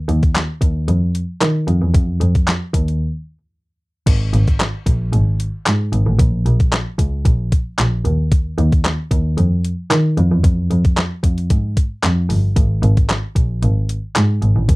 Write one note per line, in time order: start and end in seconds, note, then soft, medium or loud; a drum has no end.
0.09 0.40 D#2 loud
0.09 closed hi-hat medium
0.23 kick loud
0.23 closed hi-hat soft
0.35 snare loud
0.35 clap loud
0.35 closed hi-hat medium
0.61 0.82 D#2 medium
0.61 kick medium
0.61 closed hi-hat medium
0.88 1.09 F2 loud
0.88 closed hi-hat medium
1.15 closed hi-hat medium
1.41 1.52 D#3 loud
1.41 snare medium
1.41 clap loud
1.41 closed hi-hat loud
1.68 1.79 F2 loud
1.68 closed hi-hat medium
1.82 1.92 E2 medium
1.94 2.15 F2 loud
1.94 kick loud
1.94 closed hi-hat medium
2.21 2.52 F2 loud
2.21 closed hi-hat medium
2.35 kick loud
2.35 closed hi-hat medium
2.47 snare loud
2.47 clap loud
2.47 closed hi-hat medium
2.74 2.95 D#2 loud
2.74 kick medium
2.74 closed hi-hat medium
2.88 closed hi-hat medium
4.07 4.27 G#1 loud
4.07 kick loud
4.07 closed hi-hat medium
4.07 crash loud
4.33 4.65 G#1 loud
4.33 closed hi-hat medium
4.47 kick medium
4.47 closed hi-hat soft
4.60 snare loud
4.60 clap loud
4.60 closed hi-hat medium
4.86 5.07 A#1 loud
4.86 kick medium
4.86 closed hi-hat medium
5.13 5.34 G#1 loud
5.13 closed hi-hat medium
5.40 closed hi-hat medium
5.66 5.77 G#2 loud
5.66 snare loud
5.66 clap loud
5.66 closed hi-hat loud
5.93 6.04 G#1 loud
5.93 closed hi-hat medium
6.07 6.17 A1 medium
6.19 6.40 A#1 loud
6.19 kick loud
6.19 closed hi-hat medium
6.46 6.77 A#1 loud
6.46 closed hi-hat medium
6.60 kick loud
6.60 closed hi-hat medium
6.72 snare loud
6.72 clap loud
6.72 closed hi-hat medium
6.99 7.19 C#2 loud
6.99 kick loud
6.99 closed hi-hat medium
7.25 7.46 A#1 loud
7.25 kick loud
7.25 closed hi-hat medium
7.52 kick medium
7.52 closed hi-hat medium
7.79 7.99 A#1 medium
7.79 snare medium
7.79 clap loud
7.79 closed hi-hat loud
8.05 8.46 D#2 loud
8.05 closed hi-hat medium
8.32 kick loud
8.32 closed hi-hat medium
8.58 8.90 D#2 loud
8.58 closed hi-hat medium
8.72 kick loud
8.72 closed hi-hat soft
8.85 snare loud
8.85 clap loud
8.85 closed hi-hat medium
9.11 9.32 D#2 loud
9.11 kick loud
9.11 closed hi-hat medium
9.38 9.58 F2 loud
9.38 closed hi-hat medium
9.65 closed hi-hat medium
9.91 10.02 D#3 loud
9.91 snare medium
9.91 clap loud
9.91 closed hi-hat loud
10.17 10.28 F2 loud
10.17 closed hi-hat medium
10.32 10.41 E2 medium
10.44 10.65 F2 loud
10.44 kick loud
10.44 closed hi-hat medium
10.71 11.02 F2 loud
10.71 closed hi-hat medium
10.85 kick loud
10.85 closed hi-hat soft
10.97 snare loud
10.97 clap loud
10.97 closed hi-hat medium
11.23 11.44 F2 medium
11.23 kick medium
11.23 closed hi-hat medium
11.38 closed hi-hat medium
11.50 11.71 G#2 loud
11.50 kick loud
11.50 closed hi-hat loud
11.77 kick medium
11.77 closed hi-hat medium
12.03 12.24 F2 medium
12.03 snare medium
12.03 clap loud
12.03 closed hi-hat loud
12.30 12.50 G1 medium
12.30 open hi-hat medium
12.56 12.77 G#1 loud
12.56 kick loud
12.56 closed hi-hat loud
12.83 13.14 G#1 loud
12.83 closed hi-hat medium
12.97 kick loud
12.97 closed hi-hat medium
13.09 snare loud
13.09 clap loud
13.09 closed hi-hat medium
13.36 13.56 A#1 loud
13.36 kick medium
13.36 closed hi-hat medium
13.63 13.83 G#1 loud
13.63 closed hi-hat medium
13.89 closed hi-hat medium
14.16 14.27 G#2 loud
14.16 snare medium
14.16 clap loud
14.16 closed hi-hat loud
14.42 14.53 G#1 medium
14.42 closed hi-hat medium
14.56 14.66 A1 medium
14.69 14.76 A#1 loud
14.69 kick loud
14.69 closed hi-hat medium